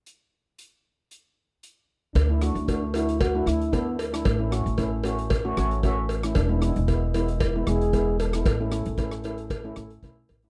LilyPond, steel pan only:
\new Staff \with { instrumentName = "Steel pan" } { \time 4/4 \key a \major \tempo 4 = 114 << { r1 | r1 | r2 r8 cis''8 e''4 | r1 |
r1 | } \\ { r1 | r16 <a d' e'>16 <a d' fis'>16 r16 <a d' fis'>16 r16 <a d' fis'>8 r16 <a d' e'>16 <a d' e'>16 r16 <a d' e'>8 r16 <a d' e'>16 | r16 <a cis' e'>16 <a cis' fis'>16 r16 <a cis' e'>16 r16 <a cis' fis'>8 r16 <a cis' fis'>16 <a cis' fis'>16 r16 <a cis' fis'>8 r16 <a cis' e'>16 | r16 <gis b e'>16 <gis b e'>16 r16 <gis b e'>16 r16 <gis b e'>8 r16 <gis b e'>16 <gis b e'>16 r16 <gis b e'>8 r16 <gis b e'>16 |
r16 <a cis' e'>16 <a cis' e'>16 r16 <a cis' e'>16 r16 <a cis' e'>8 r16 <a cis' e'>16 <a cis' e'>16 r16 <a cis' e'>8 r16 <a cis' e'>16 | } >> }